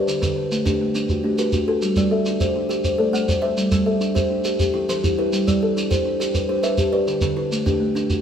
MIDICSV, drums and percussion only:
0, 0, Header, 1, 2, 480
1, 0, Start_track
1, 0, Key_signature, 1, "major"
1, 0, Tempo, 291829
1, 123, Time_signature, 12, 3, 24, 8
1, 13510, End_track
2, 0, Start_track
2, 0, Title_t, "Shekere"
2, 131, Note_on_c, 9, 82, 63
2, 296, Note_off_c, 9, 82, 0
2, 370, Note_on_c, 9, 82, 80
2, 535, Note_off_c, 9, 82, 0
2, 850, Note_on_c, 9, 82, 63
2, 1014, Note_off_c, 9, 82, 0
2, 1086, Note_on_c, 9, 82, 75
2, 1251, Note_off_c, 9, 82, 0
2, 1558, Note_on_c, 9, 82, 59
2, 1722, Note_off_c, 9, 82, 0
2, 1796, Note_on_c, 9, 82, 67
2, 1960, Note_off_c, 9, 82, 0
2, 2273, Note_on_c, 9, 82, 55
2, 2437, Note_off_c, 9, 82, 0
2, 2508, Note_on_c, 9, 82, 68
2, 2673, Note_off_c, 9, 82, 0
2, 2990, Note_on_c, 9, 82, 54
2, 3154, Note_off_c, 9, 82, 0
2, 3225, Note_on_c, 9, 82, 67
2, 3390, Note_off_c, 9, 82, 0
2, 3707, Note_on_c, 9, 82, 58
2, 3872, Note_off_c, 9, 82, 0
2, 3956, Note_on_c, 9, 82, 71
2, 4120, Note_off_c, 9, 82, 0
2, 4444, Note_on_c, 9, 82, 63
2, 4608, Note_off_c, 9, 82, 0
2, 4676, Note_on_c, 9, 82, 72
2, 4840, Note_off_c, 9, 82, 0
2, 5170, Note_on_c, 9, 82, 64
2, 5335, Note_off_c, 9, 82, 0
2, 5405, Note_on_c, 9, 82, 80
2, 5569, Note_off_c, 9, 82, 0
2, 5877, Note_on_c, 9, 82, 69
2, 6042, Note_off_c, 9, 82, 0
2, 6112, Note_on_c, 9, 82, 90
2, 6277, Note_off_c, 9, 82, 0
2, 6594, Note_on_c, 9, 82, 66
2, 6758, Note_off_c, 9, 82, 0
2, 6845, Note_on_c, 9, 82, 80
2, 7009, Note_off_c, 9, 82, 0
2, 7308, Note_on_c, 9, 82, 70
2, 7473, Note_off_c, 9, 82, 0
2, 7560, Note_on_c, 9, 82, 85
2, 7724, Note_off_c, 9, 82, 0
2, 8048, Note_on_c, 9, 82, 71
2, 8213, Note_off_c, 9, 82, 0
2, 8291, Note_on_c, 9, 82, 80
2, 8455, Note_off_c, 9, 82, 0
2, 8763, Note_on_c, 9, 82, 71
2, 8927, Note_off_c, 9, 82, 0
2, 9010, Note_on_c, 9, 82, 82
2, 9175, Note_off_c, 9, 82, 0
2, 9494, Note_on_c, 9, 82, 69
2, 9659, Note_off_c, 9, 82, 0
2, 9721, Note_on_c, 9, 82, 82
2, 9886, Note_off_c, 9, 82, 0
2, 10216, Note_on_c, 9, 82, 68
2, 10380, Note_off_c, 9, 82, 0
2, 10437, Note_on_c, 9, 82, 78
2, 10602, Note_off_c, 9, 82, 0
2, 10910, Note_on_c, 9, 82, 62
2, 11074, Note_off_c, 9, 82, 0
2, 11147, Note_on_c, 9, 82, 77
2, 11311, Note_off_c, 9, 82, 0
2, 11636, Note_on_c, 9, 82, 61
2, 11800, Note_off_c, 9, 82, 0
2, 11863, Note_on_c, 9, 82, 77
2, 12028, Note_off_c, 9, 82, 0
2, 12369, Note_on_c, 9, 82, 64
2, 12533, Note_off_c, 9, 82, 0
2, 12606, Note_on_c, 9, 82, 79
2, 12770, Note_off_c, 9, 82, 0
2, 13094, Note_on_c, 9, 82, 59
2, 13258, Note_off_c, 9, 82, 0
2, 13322, Note_on_c, 9, 82, 70
2, 13487, Note_off_c, 9, 82, 0
2, 13510, End_track
0, 0, End_of_file